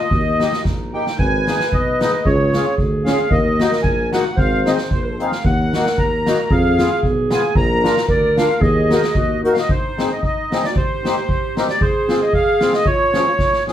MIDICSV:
0, 0, Header, 1, 6, 480
1, 0, Start_track
1, 0, Tempo, 533333
1, 104, Time_signature, 2, 2, 24, 8
1, 5384, Tempo, 529101
1, 12409, End_track
2, 0, Start_track
2, 0, Title_t, "Accordion"
2, 0, Program_c, 0, 21
2, 0, Note_on_c, 0, 75, 95
2, 555, Note_off_c, 0, 75, 0
2, 845, Note_on_c, 0, 79, 84
2, 1055, Note_off_c, 0, 79, 0
2, 1067, Note_on_c, 0, 80, 118
2, 1563, Note_on_c, 0, 75, 86
2, 1567, Note_off_c, 0, 80, 0
2, 2029, Note_on_c, 0, 73, 85
2, 2051, Note_off_c, 0, 75, 0
2, 2472, Note_off_c, 0, 73, 0
2, 2742, Note_on_c, 0, 77, 84
2, 2975, Note_on_c, 0, 75, 99
2, 2979, Note_off_c, 0, 77, 0
2, 3423, Note_off_c, 0, 75, 0
2, 3443, Note_on_c, 0, 80, 97
2, 3692, Note_off_c, 0, 80, 0
2, 3719, Note_on_c, 0, 78, 82
2, 3942, Note_on_c, 0, 77, 91
2, 3947, Note_off_c, 0, 78, 0
2, 4205, Note_on_c, 0, 75, 76
2, 4209, Note_off_c, 0, 77, 0
2, 4304, Note_off_c, 0, 75, 0
2, 4426, Note_on_c, 0, 72, 70
2, 4690, Note_on_c, 0, 77, 74
2, 4693, Note_off_c, 0, 72, 0
2, 4893, Note_off_c, 0, 77, 0
2, 4908, Note_on_c, 0, 78, 98
2, 5385, Note_on_c, 0, 82, 92
2, 5400, Note_off_c, 0, 78, 0
2, 5871, Note_on_c, 0, 77, 106
2, 5878, Note_off_c, 0, 82, 0
2, 6312, Note_off_c, 0, 77, 0
2, 6597, Note_on_c, 0, 80, 101
2, 6801, Note_off_c, 0, 80, 0
2, 6818, Note_on_c, 0, 82, 123
2, 7263, Note_off_c, 0, 82, 0
2, 7307, Note_on_c, 0, 74, 83
2, 7544, Note_off_c, 0, 74, 0
2, 7557, Note_on_c, 0, 77, 87
2, 7762, Note_off_c, 0, 77, 0
2, 7782, Note_on_c, 0, 75, 88
2, 8491, Note_off_c, 0, 75, 0
2, 8535, Note_on_c, 0, 70, 69
2, 8598, Note_on_c, 0, 77, 62
2, 8608, Note_off_c, 0, 70, 0
2, 8631, Note_off_c, 0, 77, 0
2, 8654, Note_on_c, 0, 75, 93
2, 8758, Note_on_c, 0, 72, 88
2, 8761, Note_off_c, 0, 75, 0
2, 9138, Note_off_c, 0, 72, 0
2, 9141, Note_on_c, 0, 75, 75
2, 9235, Note_off_c, 0, 75, 0
2, 9249, Note_on_c, 0, 75, 82
2, 9618, Note_on_c, 0, 74, 89
2, 9622, Note_off_c, 0, 75, 0
2, 9724, Note_off_c, 0, 74, 0
2, 9725, Note_on_c, 0, 72, 93
2, 10463, Note_on_c, 0, 70, 80
2, 10480, Note_off_c, 0, 72, 0
2, 10510, Note_off_c, 0, 70, 0
2, 10572, Note_on_c, 0, 74, 103
2, 10677, Note_on_c, 0, 72, 93
2, 10680, Note_off_c, 0, 74, 0
2, 11045, Note_on_c, 0, 75, 79
2, 11052, Note_off_c, 0, 72, 0
2, 11143, Note_off_c, 0, 75, 0
2, 11151, Note_on_c, 0, 77, 102
2, 11517, Note_on_c, 0, 75, 101
2, 11525, Note_off_c, 0, 77, 0
2, 11624, Note_on_c, 0, 73, 112
2, 11627, Note_off_c, 0, 75, 0
2, 12327, Note_off_c, 0, 73, 0
2, 12375, Note_on_c, 0, 68, 80
2, 12409, Note_off_c, 0, 68, 0
2, 12409, End_track
3, 0, Start_track
3, 0, Title_t, "Clarinet"
3, 0, Program_c, 1, 71
3, 0, Note_on_c, 1, 65, 94
3, 99, Note_off_c, 1, 65, 0
3, 104, Note_on_c, 1, 67, 72
3, 577, Note_on_c, 1, 63, 76
3, 590, Note_off_c, 1, 67, 0
3, 1066, Note_off_c, 1, 63, 0
3, 1071, Note_on_c, 1, 71, 83
3, 2022, Note_on_c, 1, 68, 77
3, 2036, Note_off_c, 1, 71, 0
3, 2972, Note_on_c, 1, 70, 96
3, 2985, Note_off_c, 1, 68, 0
3, 3778, Note_off_c, 1, 70, 0
3, 3931, Note_on_c, 1, 72, 88
3, 4642, Note_off_c, 1, 72, 0
3, 4894, Note_on_c, 1, 70, 95
3, 5864, Note_on_c, 1, 68, 88
3, 5878, Note_off_c, 1, 70, 0
3, 6814, Note_on_c, 1, 70, 99
3, 6828, Note_off_c, 1, 68, 0
3, 7281, Note_off_c, 1, 70, 0
3, 7287, Note_on_c, 1, 70, 115
3, 7770, Note_on_c, 1, 68, 95
3, 7783, Note_off_c, 1, 70, 0
3, 8257, Note_off_c, 1, 68, 0
3, 8268, Note_on_c, 1, 66, 83
3, 8510, Note_off_c, 1, 66, 0
3, 8524, Note_on_c, 1, 66, 70
3, 8733, Note_off_c, 1, 66, 0
3, 8760, Note_on_c, 1, 63, 62
3, 9666, Note_on_c, 1, 66, 63
3, 9679, Note_off_c, 1, 63, 0
3, 9726, Note_on_c, 1, 67, 84
3, 9739, Note_off_c, 1, 66, 0
3, 10675, Note_on_c, 1, 68, 99
3, 10689, Note_off_c, 1, 67, 0
3, 11633, Note_on_c, 1, 65, 72
3, 11647, Note_off_c, 1, 68, 0
3, 12368, Note_off_c, 1, 65, 0
3, 12409, End_track
4, 0, Start_track
4, 0, Title_t, "Accordion"
4, 0, Program_c, 2, 21
4, 351, Note_on_c, 2, 58, 59
4, 362, Note_on_c, 2, 63, 55
4, 370, Note_on_c, 2, 67, 62
4, 458, Note_off_c, 2, 58, 0
4, 464, Note_off_c, 2, 63, 0
4, 468, Note_off_c, 2, 67, 0
4, 839, Note_on_c, 2, 58, 67
4, 843, Note_on_c, 2, 63, 59
4, 854, Note_on_c, 2, 67, 68
4, 945, Note_off_c, 2, 58, 0
4, 947, Note_off_c, 2, 63, 0
4, 952, Note_off_c, 2, 67, 0
4, 1317, Note_on_c, 2, 59, 52
4, 1331, Note_on_c, 2, 63, 54
4, 1338, Note_on_c, 2, 68, 58
4, 1426, Note_off_c, 2, 59, 0
4, 1433, Note_off_c, 2, 63, 0
4, 1436, Note_off_c, 2, 68, 0
4, 1802, Note_on_c, 2, 59, 67
4, 1810, Note_on_c, 2, 63, 57
4, 1818, Note_on_c, 2, 68, 70
4, 1907, Note_off_c, 2, 59, 0
4, 1911, Note_off_c, 2, 63, 0
4, 1914, Note_off_c, 2, 68, 0
4, 2283, Note_on_c, 2, 61, 69
4, 2288, Note_on_c, 2, 65, 51
4, 2296, Note_on_c, 2, 68, 75
4, 2384, Note_off_c, 2, 61, 0
4, 2386, Note_off_c, 2, 65, 0
4, 2390, Note_off_c, 2, 68, 0
4, 2749, Note_on_c, 2, 61, 59
4, 2760, Note_on_c, 2, 65, 63
4, 2770, Note_on_c, 2, 68, 77
4, 2854, Note_off_c, 2, 61, 0
4, 2860, Note_off_c, 2, 65, 0
4, 2865, Note_off_c, 2, 68, 0
4, 3234, Note_on_c, 2, 58, 63
4, 3243, Note_on_c, 2, 63, 60
4, 3250, Note_on_c, 2, 66, 73
4, 3336, Note_off_c, 2, 58, 0
4, 3341, Note_off_c, 2, 63, 0
4, 3344, Note_off_c, 2, 66, 0
4, 3704, Note_on_c, 2, 58, 69
4, 3714, Note_on_c, 2, 63, 59
4, 3726, Note_on_c, 2, 66, 80
4, 3811, Note_off_c, 2, 58, 0
4, 3816, Note_off_c, 2, 63, 0
4, 3822, Note_off_c, 2, 66, 0
4, 4192, Note_on_c, 2, 60, 66
4, 4197, Note_on_c, 2, 63, 58
4, 4208, Note_on_c, 2, 68, 73
4, 4296, Note_off_c, 2, 60, 0
4, 4298, Note_off_c, 2, 63, 0
4, 4304, Note_off_c, 2, 68, 0
4, 4675, Note_on_c, 2, 60, 61
4, 4685, Note_on_c, 2, 63, 58
4, 4694, Note_on_c, 2, 68, 67
4, 4779, Note_off_c, 2, 60, 0
4, 4784, Note_off_c, 2, 63, 0
4, 4788, Note_off_c, 2, 68, 0
4, 5162, Note_on_c, 2, 58, 66
4, 5171, Note_on_c, 2, 63, 55
4, 5177, Note_on_c, 2, 66, 68
4, 5262, Note_off_c, 2, 58, 0
4, 5267, Note_off_c, 2, 63, 0
4, 5270, Note_off_c, 2, 66, 0
4, 5639, Note_on_c, 2, 58, 59
4, 5643, Note_on_c, 2, 63, 56
4, 5654, Note_on_c, 2, 66, 74
4, 5740, Note_off_c, 2, 58, 0
4, 5742, Note_off_c, 2, 63, 0
4, 5748, Note_off_c, 2, 66, 0
4, 6112, Note_on_c, 2, 59, 62
4, 6118, Note_on_c, 2, 65, 57
4, 6127, Note_on_c, 2, 68, 71
4, 6215, Note_off_c, 2, 59, 0
4, 6218, Note_off_c, 2, 65, 0
4, 6223, Note_off_c, 2, 68, 0
4, 6591, Note_on_c, 2, 59, 67
4, 6597, Note_on_c, 2, 65, 65
4, 6610, Note_on_c, 2, 68, 84
4, 6693, Note_off_c, 2, 59, 0
4, 6696, Note_off_c, 2, 65, 0
4, 6703, Note_off_c, 2, 68, 0
4, 7058, Note_on_c, 2, 62, 60
4, 7062, Note_on_c, 2, 65, 66
4, 7072, Note_on_c, 2, 70, 70
4, 7166, Note_off_c, 2, 62, 0
4, 7168, Note_off_c, 2, 65, 0
4, 7173, Note_off_c, 2, 70, 0
4, 7553, Note_on_c, 2, 62, 70
4, 7561, Note_on_c, 2, 65, 62
4, 7569, Note_on_c, 2, 70, 69
4, 7654, Note_off_c, 2, 62, 0
4, 7658, Note_off_c, 2, 65, 0
4, 7662, Note_off_c, 2, 70, 0
4, 8034, Note_on_c, 2, 63, 63
4, 8042, Note_on_c, 2, 66, 58
4, 8050, Note_on_c, 2, 70, 72
4, 8136, Note_off_c, 2, 63, 0
4, 8140, Note_off_c, 2, 66, 0
4, 8144, Note_off_c, 2, 70, 0
4, 8513, Note_on_c, 2, 63, 78
4, 8527, Note_on_c, 2, 66, 65
4, 8529, Note_on_c, 2, 70, 75
4, 8620, Note_off_c, 2, 63, 0
4, 8626, Note_off_c, 2, 66, 0
4, 8628, Note_off_c, 2, 70, 0
4, 9010, Note_on_c, 2, 60, 63
4, 9014, Note_on_c, 2, 63, 50
4, 9022, Note_on_c, 2, 68, 67
4, 9110, Note_off_c, 2, 60, 0
4, 9112, Note_off_c, 2, 63, 0
4, 9116, Note_off_c, 2, 68, 0
4, 9493, Note_on_c, 2, 60, 57
4, 9504, Note_on_c, 2, 63, 55
4, 9510, Note_on_c, 2, 68, 67
4, 9592, Note_off_c, 2, 60, 0
4, 9597, Note_off_c, 2, 63, 0
4, 9600, Note_off_c, 2, 68, 0
4, 9972, Note_on_c, 2, 60, 57
4, 9979, Note_on_c, 2, 63, 54
4, 9986, Note_on_c, 2, 67, 73
4, 10072, Note_off_c, 2, 60, 0
4, 10076, Note_off_c, 2, 63, 0
4, 10079, Note_off_c, 2, 67, 0
4, 10448, Note_on_c, 2, 60, 62
4, 10453, Note_on_c, 2, 63, 61
4, 10465, Note_on_c, 2, 67, 73
4, 10549, Note_off_c, 2, 60, 0
4, 10551, Note_off_c, 2, 63, 0
4, 10557, Note_off_c, 2, 67, 0
4, 10917, Note_on_c, 2, 60, 60
4, 10927, Note_on_c, 2, 65, 56
4, 10931, Note_on_c, 2, 68, 70
4, 11021, Note_off_c, 2, 60, 0
4, 11026, Note_off_c, 2, 65, 0
4, 11028, Note_off_c, 2, 68, 0
4, 11399, Note_on_c, 2, 60, 67
4, 11409, Note_on_c, 2, 65, 60
4, 11414, Note_on_c, 2, 68, 72
4, 11499, Note_off_c, 2, 60, 0
4, 11504, Note_off_c, 2, 65, 0
4, 11506, Note_off_c, 2, 68, 0
4, 11863, Note_on_c, 2, 53, 62
4, 11875, Note_on_c, 2, 61, 53
4, 11877, Note_on_c, 2, 65, 58
4, 11883, Note_on_c, 2, 68, 66
4, 11971, Note_off_c, 2, 53, 0
4, 11977, Note_off_c, 2, 61, 0
4, 11978, Note_off_c, 2, 65, 0
4, 11981, Note_off_c, 2, 68, 0
4, 12359, Note_on_c, 2, 53, 66
4, 12362, Note_on_c, 2, 61, 58
4, 12371, Note_on_c, 2, 65, 58
4, 12374, Note_on_c, 2, 68, 66
4, 12409, Note_off_c, 2, 53, 0
4, 12409, Note_off_c, 2, 61, 0
4, 12409, Note_off_c, 2, 65, 0
4, 12409, Note_off_c, 2, 68, 0
4, 12409, End_track
5, 0, Start_track
5, 0, Title_t, "Tuba"
5, 0, Program_c, 3, 58
5, 100, Note_on_c, 3, 39, 101
5, 416, Note_off_c, 3, 39, 0
5, 588, Note_on_c, 3, 34, 63
5, 903, Note_off_c, 3, 34, 0
5, 1071, Note_on_c, 3, 32, 97
5, 1385, Note_off_c, 3, 32, 0
5, 1548, Note_on_c, 3, 35, 69
5, 1860, Note_off_c, 3, 35, 0
5, 2030, Note_on_c, 3, 37, 118
5, 2339, Note_off_c, 3, 37, 0
5, 2501, Note_on_c, 3, 38, 85
5, 2812, Note_off_c, 3, 38, 0
5, 2978, Note_on_c, 3, 39, 117
5, 3290, Note_off_c, 3, 39, 0
5, 3452, Note_on_c, 3, 34, 90
5, 3767, Note_off_c, 3, 34, 0
5, 3937, Note_on_c, 3, 32, 105
5, 4251, Note_off_c, 3, 32, 0
5, 4419, Note_on_c, 3, 34, 73
5, 4734, Note_off_c, 3, 34, 0
5, 4905, Note_on_c, 3, 39, 116
5, 5216, Note_off_c, 3, 39, 0
5, 5385, Note_on_c, 3, 39, 86
5, 5696, Note_off_c, 3, 39, 0
5, 5856, Note_on_c, 3, 41, 112
5, 6169, Note_off_c, 3, 41, 0
5, 6334, Note_on_c, 3, 35, 94
5, 6646, Note_off_c, 3, 35, 0
5, 6810, Note_on_c, 3, 34, 120
5, 7124, Note_off_c, 3, 34, 0
5, 7291, Note_on_c, 3, 38, 82
5, 7605, Note_off_c, 3, 38, 0
5, 7771, Note_on_c, 3, 39, 123
5, 8087, Note_off_c, 3, 39, 0
5, 8259, Note_on_c, 3, 39, 84
5, 8577, Note_off_c, 3, 39, 0
5, 12409, End_track
6, 0, Start_track
6, 0, Title_t, "Drums"
6, 100, Note_on_c, 9, 36, 69
6, 190, Note_off_c, 9, 36, 0
6, 360, Note_on_c, 9, 38, 63
6, 450, Note_off_c, 9, 38, 0
6, 473, Note_on_c, 9, 38, 63
6, 563, Note_off_c, 9, 38, 0
6, 586, Note_on_c, 9, 38, 45
6, 587, Note_on_c, 9, 36, 60
6, 676, Note_off_c, 9, 38, 0
6, 677, Note_off_c, 9, 36, 0
6, 959, Note_on_c, 9, 38, 60
6, 1049, Note_off_c, 9, 38, 0
6, 1072, Note_on_c, 9, 36, 72
6, 1162, Note_off_c, 9, 36, 0
6, 1325, Note_on_c, 9, 38, 73
6, 1325, Note_on_c, 9, 44, 42
6, 1415, Note_off_c, 9, 38, 0
6, 1415, Note_off_c, 9, 44, 0
6, 1440, Note_on_c, 9, 38, 64
6, 1530, Note_off_c, 9, 38, 0
6, 1553, Note_on_c, 9, 36, 64
6, 1643, Note_off_c, 9, 36, 0
6, 1807, Note_on_c, 9, 38, 82
6, 1807, Note_on_c, 9, 44, 39
6, 1897, Note_off_c, 9, 38, 0
6, 1897, Note_off_c, 9, 44, 0
6, 2029, Note_on_c, 9, 36, 68
6, 2119, Note_off_c, 9, 36, 0
6, 2279, Note_on_c, 9, 38, 62
6, 2279, Note_on_c, 9, 44, 38
6, 2369, Note_off_c, 9, 38, 0
6, 2369, Note_off_c, 9, 44, 0
6, 2503, Note_on_c, 9, 36, 66
6, 2593, Note_off_c, 9, 36, 0
6, 2759, Note_on_c, 9, 38, 78
6, 2759, Note_on_c, 9, 44, 45
6, 2849, Note_off_c, 9, 38, 0
6, 2849, Note_off_c, 9, 44, 0
6, 2978, Note_on_c, 9, 36, 83
6, 3068, Note_off_c, 9, 36, 0
6, 3236, Note_on_c, 9, 38, 73
6, 3236, Note_on_c, 9, 44, 36
6, 3326, Note_off_c, 9, 38, 0
6, 3326, Note_off_c, 9, 44, 0
6, 3348, Note_on_c, 9, 38, 65
6, 3438, Note_off_c, 9, 38, 0
6, 3456, Note_on_c, 9, 36, 67
6, 3546, Note_off_c, 9, 36, 0
6, 3713, Note_on_c, 9, 38, 78
6, 3713, Note_on_c, 9, 44, 44
6, 3803, Note_off_c, 9, 38, 0
6, 3803, Note_off_c, 9, 44, 0
6, 3937, Note_on_c, 9, 36, 82
6, 4027, Note_off_c, 9, 36, 0
6, 4193, Note_on_c, 9, 38, 67
6, 4193, Note_on_c, 9, 44, 38
6, 4283, Note_off_c, 9, 38, 0
6, 4283, Note_off_c, 9, 44, 0
6, 4299, Note_on_c, 9, 38, 68
6, 4389, Note_off_c, 9, 38, 0
6, 4419, Note_on_c, 9, 36, 65
6, 4509, Note_off_c, 9, 36, 0
6, 4679, Note_on_c, 9, 44, 49
6, 4769, Note_off_c, 9, 44, 0
6, 4787, Note_on_c, 9, 38, 61
6, 4877, Note_off_c, 9, 38, 0
6, 4902, Note_on_c, 9, 36, 77
6, 4992, Note_off_c, 9, 36, 0
6, 5160, Note_on_c, 9, 38, 68
6, 5160, Note_on_c, 9, 44, 36
6, 5250, Note_off_c, 9, 38, 0
6, 5250, Note_off_c, 9, 44, 0
6, 5272, Note_on_c, 9, 38, 65
6, 5362, Note_off_c, 9, 38, 0
6, 5382, Note_on_c, 9, 36, 61
6, 5473, Note_off_c, 9, 36, 0
6, 5640, Note_on_c, 9, 38, 82
6, 5640, Note_on_c, 9, 44, 47
6, 5731, Note_off_c, 9, 38, 0
6, 5731, Note_off_c, 9, 44, 0
6, 5858, Note_on_c, 9, 36, 80
6, 5949, Note_off_c, 9, 36, 0
6, 6113, Note_on_c, 9, 38, 69
6, 6113, Note_on_c, 9, 44, 40
6, 6204, Note_off_c, 9, 38, 0
6, 6204, Note_off_c, 9, 44, 0
6, 6336, Note_on_c, 9, 36, 61
6, 6427, Note_off_c, 9, 36, 0
6, 6584, Note_on_c, 9, 38, 83
6, 6584, Note_on_c, 9, 44, 44
6, 6675, Note_off_c, 9, 38, 0
6, 6675, Note_off_c, 9, 44, 0
6, 6810, Note_on_c, 9, 36, 86
6, 6901, Note_off_c, 9, 36, 0
6, 7074, Note_on_c, 9, 38, 69
6, 7074, Note_on_c, 9, 44, 40
6, 7165, Note_off_c, 9, 38, 0
6, 7165, Note_off_c, 9, 44, 0
6, 7186, Note_on_c, 9, 38, 71
6, 7276, Note_off_c, 9, 38, 0
6, 7292, Note_on_c, 9, 36, 64
6, 7382, Note_off_c, 9, 36, 0
6, 7554, Note_on_c, 9, 38, 80
6, 7554, Note_on_c, 9, 44, 42
6, 7645, Note_off_c, 9, 38, 0
6, 7645, Note_off_c, 9, 44, 0
6, 7772, Note_on_c, 9, 36, 79
6, 7862, Note_off_c, 9, 36, 0
6, 8036, Note_on_c, 9, 38, 71
6, 8036, Note_on_c, 9, 44, 39
6, 8127, Note_off_c, 9, 38, 0
6, 8127, Note_off_c, 9, 44, 0
6, 8146, Note_on_c, 9, 38, 62
6, 8237, Note_off_c, 9, 38, 0
6, 8258, Note_on_c, 9, 36, 70
6, 8349, Note_off_c, 9, 36, 0
6, 8528, Note_on_c, 9, 44, 45
6, 8618, Note_off_c, 9, 44, 0
6, 8634, Note_on_c, 9, 38, 67
6, 8725, Note_off_c, 9, 38, 0
6, 8750, Note_on_c, 9, 36, 76
6, 8841, Note_off_c, 9, 36, 0
6, 9015, Note_on_c, 9, 38, 66
6, 9106, Note_off_c, 9, 38, 0
6, 9237, Note_on_c, 9, 36, 54
6, 9327, Note_off_c, 9, 36, 0
6, 9501, Note_on_c, 9, 38, 76
6, 9591, Note_off_c, 9, 38, 0
6, 9610, Note_on_c, 9, 38, 55
6, 9701, Note_off_c, 9, 38, 0
6, 9717, Note_on_c, 9, 36, 76
6, 9808, Note_off_c, 9, 36, 0
6, 9982, Note_on_c, 9, 38, 72
6, 10073, Note_off_c, 9, 38, 0
6, 10198, Note_on_c, 9, 36, 64
6, 10288, Note_off_c, 9, 36, 0
6, 10452, Note_on_c, 9, 38, 76
6, 10543, Note_off_c, 9, 38, 0
6, 10557, Note_on_c, 9, 38, 54
6, 10647, Note_off_c, 9, 38, 0
6, 10672, Note_on_c, 9, 36, 77
6, 10762, Note_off_c, 9, 36, 0
6, 10923, Note_on_c, 9, 38, 66
6, 11014, Note_off_c, 9, 38, 0
6, 11146, Note_on_c, 9, 36, 59
6, 11236, Note_off_c, 9, 36, 0
6, 11394, Note_on_c, 9, 38, 75
6, 11485, Note_off_c, 9, 38, 0
6, 11508, Note_on_c, 9, 38, 58
6, 11599, Note_off_c, 9, 38, 0
6, 11620, Note_on_c, 9, 36, 74
6, 11711, Note_off_c, 9, 36, 0
6, 11874, Note_on_c, 9, 38, 68
6, 11965, Note_off_c, 9, 38, 0
6, 12102, Note_on_c, 9, 36, 62
6, 12105, Note_on_c, 9, 38, 38
6, 12193, Note_off_c, 9, 36, 0
6, 12196, Note_off_c, 9, 38, 0
6, 12233, Note_on_c, 9, 38, 36
6, 12324, Note_off_c, 9, 38, 0
6, 12365, Note_on_c, 9, 38, 56
6, 12409, Note_off_c, 9, 38, 0
6, 12409, End_track
0, 0, End_of_file